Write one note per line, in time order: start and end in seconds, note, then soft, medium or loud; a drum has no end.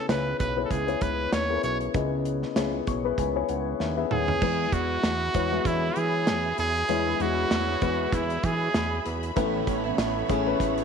0.00 0.36 C#3 medium
0.00 0.08 B3 medium
0.00 0.09 E4 medium
0.00 0.09 G#4 medium
0.00 0.10 C#5 medium
0.08 0.34 C#2 medium
0.08 0.54 B3 medium
0.08 0.54 E4 medium
0.08 0.54 G#4 medium
0.08 0.38 B4 medium
0.08 0.55 C#5 medium
0.08 snare loud
0.08 closed hi-hat medium
0.39 0.65 B1 medium
0.39 0.62 B4 medium
0.39 kick medium
0.39 closed hi-hat medium
0.57 0.86 B3 medium
0.57 0.86 E4 medium
0.57 0.86 G#4 medium
0.57 0.86 C#5 medium
0.65 0.72 A4 medium
0.70 0.96 C#2 medium
0.70 1.03 G#4 medium
0.70 kick medium
0.70 closed hi-hat medium
0.87 1.46 B3 medium
0.87 1.46 E4 medium
0.87 1.46 G#4 medium
0.87 1.46 C#5 medium
0.87 closed hi-hat soft
1.01 1.27 C#2 medium
1.01 1.34 B4 medium
1.01 kick medium
1.01 closed hi-hat medium
1.32 1.58 D#2 medium
1.32 1.63 C#5 medium
1.32 snare loud
1.32 closed hi-hat medium
1.49 1.92 B3 medium
1.49 1.92 E4 medium
1.49 1.92 G#4 medium
1.49 1.56 A#4 medium
1.57 1.96 B4 medium
1.63 1.89 B1 medium
1.63 1.78 C#5 medium
1.63 closed hi-hat medium
1.81 closed hi-hat soft
1.94 2.45 C#2 loud
1.94 2.83 C#3 medium
1.94 2.53 B3 medium
1.94 2.53 E4 medium
1.94 2.53 G#4 medium
1.94 2.54 D#5 medium
1.94 kick medium
1.94 closed hi-hat medium
2.25 closed hi-hat medium
2.43 snare soft
2.56 2.82 C#2 loud
2.56 3.02 B3 medium
2.56 3.02 E4 medium
2.56 3.02 G#4 medium
2.56 3.02 C#5 medium
2.56 snare loud
2.56 closed hi-hat medium
2.87 3.13 B1 medium
2.87 3.04 C#6 medium
2.87 kick medium
2.87 closed hi-hat medium
3.04 3.33 B3 medium
3.04 3.34 E4 medium
3.04 3.34 G#4 medium
3.04 3.34 B4 medium
3.04 3.17 B5 medium
3.18 3.43 C#2 loud
3.18 3.34 G#5 medium
3.18 kick medium
3.18 closed hi-hat medium
3.35 3.93 B3 medium
3.35 3.94 E4 medium
3.35 3.94 G#4 medium
3.35 3.94 C#5 medium
3.35 3.48 G#5 medium
3.49 3.75 C#2 medium
3.49 3.78 F#5 medium
3.49 closed hi-hat medium
3.80 4.05 D#2 medium
3.80 3.96 E5 medium
3.80 snare soft
3.97 4.39 B3 medium
3.97 4.40 E4 medium
3.97 4.40 G#4 medium
3.97 4.40 E5 medium
4.11 4.36 D#2 medium
4.11 4.75 G#4 medium
4.11 4.40 F#5 medium
4.11 mid tom medium
4.28 floor tom medium
4.42 4.67 E2 loud
4.42 5.31 E3 medium
4.42 5.30 G#3 medium
4.42 5.30 B3 medium
4.42 5.30 E4 medium
4.42 9.33 G#4 medium
4.42 5.31 B4 medium
4.42 9.33 E5 medium
4.42 10.84 B5 medium
4.42 kick medium
4.42 crash medium
4.72 4.98 E2 medium
4.72 5.68 F#4 medium
4.72 kick medium
4.72 closed hi-hat medium
5.03 5.29 E2 medium
5.03 snare loud
5.03 closed hi-hat medium
5.34 5.60 E2 medium
5.34 5.50 G#3 medium
5.34 5.50 B3 medium
5.34 5.51 E4 medium
5.34 5.51 C#5 medium
5.34 kick medium
5.34 closed hi-hat medium
5.52 6.68 G#3 medium
5.52 6.68 B3 medium
5.52 6.68 E4 medium
5.52 6.68 F#4 medium
5.65 5.91 E2 medium
5.65 5.99 E4 medium
5.65 kick medium
5.65 closed hi-hat medium
5.96 6.29 E3 medium
5.96 6.59 G#4 medium
5.96 closed hi-hat medium
6.27 6.53 E2 medium
6.27 snare loud
6.27 closed hi-hat medium
6.58 6.84 E2 medium
6.58 7.23 G#4 loud
6.58 closed hi-hat medium
6.75 closed hi-hat soft
6.89 7.15 E2 loud
6.89 7.78 E3 medium
6.89 7.18 G#3 medium
6.89 7.19 B3 medium
6.89 7.19 E4 medium
6.89 7.19 C#5 medium
6.89 closed hi-hat medium
7.20 7.45 E2 loud
7.20 7.79 G#3 medium
7.20 7.79 B3 medium
7.20 7.79 E4 medium
7.20 7.80 F#4 medium
7.20 8.16 F#4 medium
7.20 closed hi-hat medium
7.51 7.76 E2 medium
7.51 snare loud
7.51 closed hi-hat medium
7.81 8.07 E2 loud
7.81 8.99 G#3 medium
7.81 8.99 B3 medium
7.81 9.00 E4 medium
7.81 9.00 B4 medium
7.81 kick medium
7.81 closed hi-hat medium
8.13 8.38 E2 medium
8.13 8.46 E4 medium
8.13 kick medium
8.13 closed hi-hat medium
8.30 closed hi-hat soft
8.43 8.69 E3 medium
8.43 9.06 G#4 medium
8.43 kick medium
8.43 closed hi-hat medium
8.74 9.00 E2 medium
8.74 snare loud
8.74 closed hi-hat medium
9.06 9.31 E2 medium
9.06 closed hi-hat medium
9.23 closed hi-hat soft
9.36 9.62 A1 loud
9.36 9.85 A2 medium
9.36 10.26 A2 medium
9.36 9.85 E3 medium
9.36 10.25 A3 medium
9.36 10.84 A3 medium
9.36 9.85 B3 medium
9.36 10.25 C#4 medium
9.36 9.84 C#4 medium
9.36 10.25 E4 medium
9.36 9.82 E4 medium
9.36 10.25 B4 medium
9.36 10.84 C#5 medium
9.36 kick loud
9.36 closed hi-hat medium
9.67 9.93 A1 medium
9.67 kick medium
9.67 closed hi-hat medium
9.84 10.28 B3 soft
9.84 10.29 C#4 soft
9.84 10.29 E4 medium
9.98 10.24 A1 loud
9.98 snare loud
9.98 closed hi-hat medium
10.28 10.55 A1 loud
10.28 10.84 E3 medium
10.28 10.45 A3 medium
10.28 10.84 B3 medium
10.28 10.45 C#4 medium
10.28 10.84 C#4 medium
10.28 10.45 E4 medium
10.28 10.84 E4 medium
10.28 10.46 G#4 medium
10.28 kick medium
10.28 closed hi-hat medium
10.46 10.84 A3 medium
10.46 10.84 C#4 medium
10.46 10.84 E4 medium
10.46 10.84 B4 medium
10.60 10.84 A1 medium
10.60 kick medium
10.60 closed hi-hat medium
10.78 closed hi-hat soft